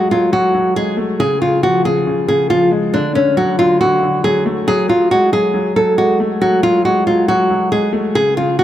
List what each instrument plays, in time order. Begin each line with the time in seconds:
Already playing: grand piano F#3 G#3 A3
0.11 grand piano F#3, nylon-string guitar F4
0.32 grand piano F#3, nylon-string guitar F#4
0.54 grand piano F#3
0.76 grand piano G#3, nylon-string guitar G#4
0.97 grand piano A3
1.20 grand piano C#3, nylon-string guitar G#4
1.41 grand piano C#3, nylon-string guitar F4
1.63 grand piano F3, nylon-string guitar F#4
1.85 grand piano C#3, nylon-string guitar G#4
2.07 grand piano C#3
2.28 grand piano C#3, nylon-string guitar G#4
2.50 grand piano F3, nylon-string guitar F4
2.71 grand piano G#3
2.94 grand piano D3, nylon-string guitar D4
3.15 grand piano D3, nylon-string guitar C#4
3.37 grand piano F#3, nylon-string guitar F#4
3.59 grand piano D3, nylon-string guitar F4
3.81 grand piano D3, nylon-string guitar F#4
4.02 grand piano D3
4.24 grand piano F#3, nylon-string guitar G#4
4.46 grand piano A3
4.68 grand piano F#3, nylon-string guitar G#4
4.89 grand piano F#3, nylon-string guitar F4
5.11 grand piano G#3, nylon-string guitar F#4
5.32 grand piano F#3, nylon-string guitar G#4
5.54 grand piano F#3
5.76 grand piano F#3, nylon-string guitar A4
5.98 grand piano G#3, nylon-string guitar F#4
6.20 grand piano A3
6.41 grand piano F#3, nylon-string guitar F#4
6.63 grand piano F#3, nylon-string guitar F4
6.85 grand piano G#3, nylon-string guitar F#4
7.07 grand piano F#3, nylon-string guitar F4
7.28 grand piano F#3, nylon-string guitar F#4
7.50 grand piano F#3
7.72 grand piano G#3, nylon-string guitar G#4
7.93 grand piano A3
8.15 grand piano C#3, nylon-string guitar G#4
8.37 grand piano C#3, nylon-string guitar F4
8.59 grand piano F3, nylon-string guitar F#4